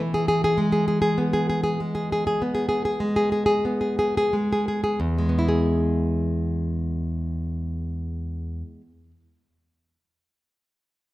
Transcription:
0.00 2.36 E3 medium
0.14 0.27 G#4 medium
0.28 0.43 G#4 medium
0.44 0.60 G#4 medium
0.58 1.79 G#3 soft
0.72 0.87 G#4 medium
0.88 1.01 G#4 medium
1.02 1.18 G#4 medium
1.18 2.41 B3 soft
1.33 1.48 G#4 medium
1.50 1.62 G#4 medium
1.64 1.79 G#4 medium
1.80 2.99 G#3 soft
1.95 2.10 G#4 medium
2.12 2.26 G#4 medium
2.27 2.42 G#4 medium
2.42 3.64 B3 soft
2.55 2.67 G#4 medium
2.69 2.84 G#4 medium
2.85 3.02 G#4 medium
3.00 4.32 G#3 soft
3.16 3.31 G#4 medium
3.32 3.45 G#4 medium
3.46 3.65 G#4 medium
3.65 4.98 B3 soft
3.81 3.98 G#4 soft
3.99 4.16 G#4 medium
4.17 4.35 G#4 medium
4.33 4.99 G#3 soft
4.53 4.67 G#4 medium
4.68 4.82 G#4 medium
4.84 4.99 G#4 medium
5.00 8.62 E2 medium
5.18 8.81 G#3 soft
5.29 8.91 B3 soft
5.39 9.01 E4 soft
5.49 9.11 G#4 soft

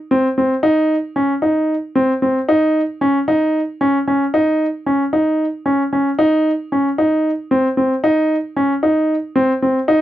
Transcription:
0.11 0.26 C4 medium
0.38 0.53 C4 medium
0.63 0.94 D#4 medium
1.16 1.32 C#4 medium
1.42 1.74 D#4 medium
1.96 2.11 C4 medium
2.22 2.38 C4 medium
2.49 2.80 D#4 medium
3.01 3.17 C#4 medium
3.28 3.59 D#4 medium
3.81 3.97 C#4 medium
4.08 4.23 C#4 medium
4.34 4.65 D#4 medium
4.86 5.02 C#4 medium
5.13 5.44 D#4 medium
5.66 5.81 C#4 medium
5.93 6.08 C#4 medium
6.19 6.50 D#4 medium
6.72 6.88 C#4 medium
6.98 7.29 D#4 medium
7.51 7.67 C4 medium
7.77 7.93 C4 medium
8.04 8.35 D#4 medium
8.56 8.72 C#4 medium
8.83 9.14 D#4 medium
9.36 9.51 C4 medium
9.62 9.78 C4 medium
9.88 10.01 D#4 medium

